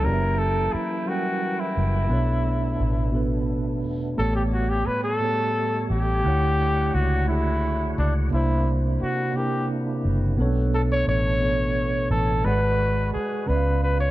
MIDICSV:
0, 0, Header, 1, 6, 480
1, 0, Start_track
1, 0, Tempo, 689655
1, 24, Time_signature, 6, 3, 24, 8
1, 9819, End_track
2, 0, Start_track
2, 0, Title_t, "Flugelhorn"
2, 0, Program_c, 0, 56
2, 29, Note_on_c, 0, 70, 93
2, 267, Note_on_c, 0, 69, 90
2, 277, Note_off_c, 0, 70, 0
2, 510, Note_on_c, 0, 64, 79
2, 520, Note_off_c, 0, 69, 0
2, 753, Note_on_c, 0, 66, 83
2, 763, Note_off_c, 0, 64, 0
2, 1110, Note_on_c, 0, 64, 78
2, 1121, Note_off_c, 0, 66, 0
2, 2307, Note_off_c, 0, 64, 0
2, 2911, Note_on_c, 0, 69, 97
2, 3020, Note_off_c, 0, 69, 0
2, 3031, Note_on_c, 0, 67, 78
2, 3084, Note_off_c, 0, 67, 0
2, 3152, Note_on_c, 0, 66, 79
2, 3268, Note_on_c, 0, 67, 88
2, 3278, Note_off_c, 0, 66, 0
2, 3385, Note_on_c, 0, 71, 83
2, 3396, Note_off_c, 0, 67, 0
2, 3505, Note_off_c, 0, 71, 0
2, 3508, Note_on_c, 0, 69, 104
2, 4078, Note_off_c, 0, 69, 0
2, 4117, Note_on_c, 0, 67, 98
2, 4831, Note_on_c, 0, 66, 83
2, 4841, Note_off_c, 0, 67, 0
2, 5065, Note_off_c, 0, 66, 0
2, 5069, Note_on_c, 0, 64, 81
2, 5519, Note_off_c, 0, 64, 0
2, 5559, Note_on_c, 0, 62, 74
2, 5663, Note_off_c, 0, 62, 0
2, 5802, Note_on_c, 0, 64, 82
2, 6066, Note_off_c, 0, 64, 0
2, 6278, Note_on_c, 0, 66, 78
2, 6516, Note_on_c, 0, 67, 78
2, 6527, Note_off_c, 0, 66, 0
2, 6750, Note_off_c, 0, 67, 0
2, 7476, Note_on_c, 0, 69, 81
2, 7528, Note_off_c, 0, 69, 0
2, 7602, Note_on_c, 0, 73, 114
2, 7705, Note_off_c, 0, 73, 0
2, 7715, Note_on_c, 0, 73, 106
2, 8402, Note_off_c, 0, 73, 0
2, 8430, Note_on_c, 0, 69, 95
2, 8664, Note_on_c, 0, 71, 97
2, 8675, Note_off_c, 0, 69, 0
2, 9135, Note_off_c, 0, 71, 0
2, 9139, Note_on_c, 0, 68, 75
2, 9381, Note_on_c, 0, 71, 85
2, 9391, Note_off_c, 0, 68, 0
2, 9621, Note_off_c, 0, 71, 0
2, 9625, Note_on_c, 0, 71, 84
2, 9736, Note_off_c, 0, 71, 0
2, 9745, Note_on_c, 0, 73, 80
2, 9819, Note_off_c, 0, 73, 0
2, 9819, End_track
3, 0, Start_track
3, 0, Title_t, "Tine electric piano"
3, 0, Program_c, 1, 4
3, 0, Control_c, 1, 64, 127
3, 13, Note_on_c, 1, 54, 76
3, 24, Note_on_c, 1, 61, 63
3, 30, Note_on_c, 1, 67, 66
3, 34, Control_c, 1, 64, 0
3, 42, Note_on_c, 1, 58, 65
3, 45, Note_on_c, 1, 74, 64
3, 80, Note_off_c, 1, 74, 0
3, 93, Note_on_c, 1, 76, 80
3, 149, Control_c, 1, 64, 127
3, 578, Note_off_c, 1, 54, 0
3, 583, Note_off_c, 1, 61, 0
3, 586, Note_off_c, 1, 67, 0
3, 592, Note_off_c, 1, 58, 0
3, 618, Note_off_c, 1, 76, 0
3, 736, Note_on_c, 1, 54, 59
3, 746, Note_on_c, 1, 61, 52
3, 755, Note_on_c, 1, 55, 54
3, 764, Note_on_c, 1, 70, 50
3, 771, Note_on_c, 1, 79, 72
3, 1299, Note_off_c, 1, 54, 0
3, 1304, Note_off_c, 1, 61, 0
3, 1309, Note_off_c, 1, 55, 0
3, 1313, Note_off_c, 1, 70, 0
3, 1317, Note_off_c, 1, 79, 0
3, 1449, Note_on_c, 1, 47, 84
3, 1456, Note_on_c, 1, 59, 72
3, 1468, Note_on_c, 1, 62, 69
3, 1475, Control_c, 1, 64, 0
3, 1477, Note_on_c, 1, 69, 73
3, 1481, Note_on_c, 1, 73, 77
3, 1577, Control_c, 1, 64, 127
3, 2016, Note_off_c, 1, 47, 0
3, 2019, Note_off_c, 1, 59, 0
3, 2025, Note_off_c, 1, 62, 0
3, 2030, Note_off_c, 1, 69, 0
3, 2032, Note_off_c, 1, 73, 0
3, 2162, Note_on_c, 1, 47, 74
3, 2173, Note_on_c, 1, 59, 62
3, 2177, Note_on_c, 1, 62, 63
3, 2189, Note_on_c, 1, 69, 66
3, 2200, Note_on_c, 1, 71, 78
3, 2732, Note_off_c, 1, 47, 0
3, 2738, Note_off_c, 1, 59, 0
3, 2740, Note_off_c, 1, 62, 0
3, 2746, Note_off_c, 1, 69, 0
3, 2751, Note_off_c, 1, 71, 0
3, 2893, Note_on_c, 1, 45, 77
3, 2906, Note_on_c, 1, 57, 73
3, 2910, Note_on_c, 1, 59, 69
3, 2915, Control_c, 1, 64, 0
3, 2924, Note_on_c, 1, 67, 74
3, 2932, Note_on_c, 1, 73, 81
3, 3034, Control_c, 1, 64, 127
3, 3458, Note_off_c, 1, 45, 0
3, 3464, Note_off_c, 1, 57, 0
3, 3466, Note_off_c, 1, 59, 0
3, 3473, Note_off_c, 1, 67, 0
3, 3477, Note_off_c, 1, 73, 0
3, 3611, Note_on_c, 1, 45, 62
3, 3625, Note_on_c, 1, 57, 52
3, 3635, Note_on_c, 1, 59, 53
3, 3641, Note_on_c, 1, 67, 54
3, 3649, Note_on_c, 1, 73, 61
3, 4177, Note_off_c, 1, 45, 0
3, 4184, Note_off_c, 1, 57, 0
3, 4189, Note_off_c, 1, 59, 0
3, 4192, Note_off_c, 1, 67, 0
3, 4196, Note_off_c, 1, 73, 0
3, 4338, Note_on_c, 1, 50, 68
3, 4342, Note_on_c, 1, 57, 67
3, 4353, Control_c, 1, 64, 0
3, 4355, Note_on_c, 1, 64, 66
3, 4363, Note_on_c, 1, 78, 72
3, 4369, Note_on_c, 1, 73, 86
3, 4466, Control_c, 1, 64, 127
3, 4900, Note_off_c, 1, 50, 0
3, 4902, Note_off_c, 1, 57, 0
3, 4909, Note_off_c, 1, 64, 0
3, 4913, Note_off_c, 1, 78, 0
3, 4916, Note_off_c, 1, 73, 0
3, 5058, Note_on_c, 1, 62, 58
3, 5065, Note_on_c, 1, 57, 56
3, 5077, Note_on_c, 1, 64, 57
3, 5084, Note_on_c, 1, 66, 52
3, 5091, Note_on_c, 1, 68, 69
3, 5620, Note_off_c, 1, 62, 0
3, 5624, Note_off_c, 1, 57, 0
3, 5630, Note_off_c, 1, 64, 0
3, 5633, Note_off_c, 1, 66, 0
3, 5637, Note_off_c, 1, 68, 0
3, 5778, Note_on_c, 1, 48, 80
3, 5787, Note_on_c, 1, 58, 72
3, 5793, Control_c, 1, 64, 0
3, 5798, Note_on_c, 1, 62, 67
3, 5807, Note_on_c, 1, 64, 69
3, 5815, Note_on_c, 1, 72, 93
3, 5923, Control_c, 1, 64, 127
3, 6340, Note_off_c, 1, 48, 0
3, 6345, Note_off_c, 1, 58, 0
3, 6350, Note_off_c, 1, 62, 0
3, 6355, Note_off_c, 1, 64, 0
3, 6359, Note_off_c, 1, 72, 0
3, 6498, Note_on_c, 1, 48, 63
3, 6506, Note_on_c, 1, 58, 54
3, 6518, Note_on_c, 1, 62, 55
3, 6526, Note_on_c, 1, 64, 58
3, 6534, Note_on_c, 1, 70, 74
3, 7060, Note_off_c, 1, 48, 0
3, 7064, Note_off_c, 1, 58, 0
3, 7070, Note_off_c, 1, 62, 0
3, 7074, Note_off_c, 1, 64, 0
3, 7078, Note_off_c, 1, 70, 0
3, 7215, Note_on_c, 1, 47, 88
3, 7222, Note_on_c, 1, 59, 96
3, 7234, Control_c, 1, 64, 0
3, 7237, Note_on_c, 1, 61, 68
3, 7241, Note_on_c, 1, 69, 96
3, 7250, Note_on_c, 1, 73, 98
3, 7276, Note_off_c, 1, 61, 0
3, 7279, Note_on_c, 1, 62, 79
3, 7339, Control_c, 1, 64, 127
3, 7779, Note_off_c, 1, 47, 0
3, 7782, Note_off_c, 1, 59, 0
3, 7792, Note_off_c, 1, 69, 0
3, 7796, Note_off_c, 1, 73, 0
3, 7811, Note_off_c, 1, 62, 0
3, 7936, Note_on_c, 1, 47, 68
3, 7941, Note_on_c, 1, 59, 57
3, 7950, Note_on_c, 1, 62, 53
3, 7960, Note_on_c, 1, 69, 59
3, 7966, Note_on_c, 1, 73, 68
3, 8499, Note_off_c, 1, 47, 0
3, 8502, Note_off_c, 1, 59, 0
3, 8506, Note_off_c, 1, 62, 0
3, 8511, Note_off_c, 1, 69, 0
3, 8514, Note_off_c, 1, 73, 0
3, 8652, Note_on_c, 1, 56, 78
3, 8660, Note_on_c, 1, 68, 71
3, 8670, Note_on_c, 1, 69, 65
3, 8674, Control_c, 1, 64, 0
3, 8674, Note_on_c, 1, 74, 70
3, 8683, Note_on_c, 1, 78, 93
3, 8713, Note_off_c, 1, 69, 0
3, 8713, Note_on_c, 1, 71, 73
3, 8798, Control_c, 1, 64, 127
3, 9217, Note_off_c, 1, 56, 0
3, 9221, Note_off_c, 1, 68, 0
3, 9228, Note_off_c, 1, 74, 0
3, 9233, Note_off_c, 1, 78, 0
3, 9248, Note_off_c, 1, 71, 0
3, 9367, Note_on_c, 1, 49, 72
3, 9375, Note_on_c, 1, 61, 62
3, 9385, Note_on_c, 1, 71, 61
3, 9392, Control_c, 1, 64, 0
3, 9392, Note_on_c, 1, 74, 60
3, 9401, Note_on_c, 1, 76, 56
3, 9438, Note_off_c, 1, 76, 0
3, 9446, Note_on_c, 1, 77, 73
3, 9508, Control_c, 1, 64, 127
3, 9819, Note_off_c, 1, 49, 0
3, 9819, Note_off_c, 1, 61, 0
3, 9819, Note_off_c, 1, 71, 0
3, 9819, Note_off_c, 1, 74, 0
3, 9819, Note_off_c, 1, 77, 0
3, 9819, End_track
4, 0, Start_track
4, 0, Title_t, "Tonewheel organ"
4, 0, Program_c, 2, 16
4, 0, Note_on_c, 2, 52, 63
4, 0, Note_on_c, 2, 64, 59
4, 15, Note_on_c, 2, 79, 52
4, 18, Note_on_c, 2, 58, 73
4, 1436, Note_off_c, 2, 52, 0
4, 1437, Note_off_c, 2, 64, 0
4, 1445, Note_off_c, 2, 79, 0
4, 1447, Note_off_c, 2, 58, 0
4, 1456, Note_on_c, 2, 62, 69
4, 1461, Note_on_c, 2, 59, 61
4, 1462, Note_on_c, 2, 57, 65
4, 2886, Note_off_c, 2, 62, 0
4, 2888, Note_off_c, 2, 59, 0
4, 2916, Note_on_c, 2, 55, 63
4, 2920, Note_on_c, 2, 73, 66
4, 4315, Note_off_c, 2, 57, 0
4, 4336, Note_off_c, 2, 55, 0
4, 4347, Note_on_c, 2, 64, 57
4, 4349, Note_on_c, 2, 62, 68
4, 4350, Note_on_c, 2, 78, 66
4, 5764, Note_off_c, 2, 73, 0
4, 5768, Note_off_c, 2, 62, 0
4, 5772, Note_on_c, 2, 48, 64
4, 5773, Note_off_c, 2, 78, 0
4, 5776, Note_on_c, 2, 62, 63
4, 5779, Note_on_c, 2, 58, 64
4, 7198, Note_off_c, 2, 64, 0
4, 7204, Note_off_c, 2, 48, 0
4, 7206, Note_off_c, 2, 62, 0
4, 7207, Note_off_c, 2, 58, 0
4, 7234, Note_on_c, 2, 59, 63
4, 7237, Note_on_c, 2, 57, 68
4, 8655, Note_off_c, 2, 59, 0
4, 8656, Note_off_c, 2, 57, 0
4, 8656, Note_on_c, 2, 56, 69
4, 8658, Note_on_c, 2, 66, 58
4, 8660, Note_on_c, 2, 71, 74
4, 9373, Note_off_c, 2, 56, 0
4, 9374, Note_off_c, 2, 66, 0
4, 9375, Note_off_c, 2, 71, 0
4, 9396, Note_on_c, 2, 49, 62
4, 9397, Note_on_c, 2, 65, 62
4, 9398, Note_on_c, 2, 59, 55
4, 9819, Note_off_c, 2, 49, 0
4, 9819, Note_off_c, 2, 59, 0
4, 9819, Note_off_c, 2, 65, 0
4, 9819, End_track
5, 0, Start_track
5, 0, Title_t, "Fingered electric bass"
5, 0, Program_c, 3, 33
5, 34, Note_on_c, 3, 30, 89
5, 481, Note_off_c, 3, 30, 0
5, 1233, Note_on_c, 3, 30, 78
5, 1474, Note_off_c, 3, 30, 0
5, 1474, Note_on_c, 3, 35, 90
5, 1921, Note_off_c, 3, 35, 0
5, 1951, Note_on_c, 3, 33, 80
5, 2669, Note_off_c, 3, 33, 0
5, 2669, Note_on_c, 3, 28, 93
5, 2883, Note_off_c, 3, 28, 0
5, 2915, Note_on_c, 3, 33, 97
5, 3362, Note_off_c, 3, 33, 0
5, 4107, Note_on_c, 3, 33, 86
5, 4322, Note_off_c, 3, 33, 0
5, 4357, Note_on_c, 3, 38, 87
5, 4803, Note_off_c, 3, 38, 0
5, 4833, Note_on_c, 3, 37, 82
5, 5521, Note_off_c, 3, 37, 0
5, 5556, Note_on_c, 3, 37, 93
5, 5767, Note_off_c, 3, 37, 0
5, 5797, Note_on_c, 3, 36, 81
5, 6243, Note_off_c, 3, 36, 0
5, 6994, Note_on_c, 3, 30, 86
5, 7206, Note_off_c, 3, 30, 0
5, 7232, Note_on_c, 3, 35, 89
5, 7681, Note_off_c, 3, 35, 0
5, 7710, Note_on_c, 3, 33, 82
5, 8399, Note_off_c, 3, 33, 0
5, 8426, Note_on_c, 3, 33, 102
5, 8641, Note_off_c, 3, 33, 0
5, 8669, Note_on_c, 3, 32, 104
5, 9119, Note_off_c, 3, 32, 0
5, 9388, Note_on_c, 3, 37, 96
5, 9819, Note_off_c, 3, 37, 0
5, 9819, End_track
6, 0, Start_track
6, 0, Title_t, "Muted fingered electric bass strokes"
6, 516, Note_on_c, 9, 29, 44
6, 586, Note_off_c, 9, 29, 0
6, 3392, Note_on_c, 9, 29, 39
6, 3462, Note_off_c, 9, 29, 0
6, 6279, Note_on_c, 9, 29, 49
6, 6349, Note_off_c, 9, 29, 0
6, 9155, Note_on_c, 9, 29, 43
6, 9225, Note_off_c, 9, 29, 0
6, 9819, End_track
0, 0, End_of_file